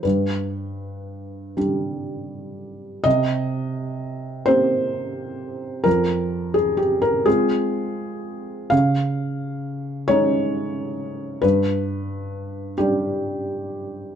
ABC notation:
X:1
M:6/8
L:1/16
Q:3/8=43
K:Cphr
V:1 name="Felt piano"
=B6 z6 | e6 c6 | B3 A G B A6 | f6 d6 |
=B6 G6 |]
V:2 name="Felt piano"
G,,6 [G,=DG]6 | C,6 [B,CG]6 | F,,6 [A,CF]6 | D,6 [A,DE]6 |
G,,6 [G,=D]6 |]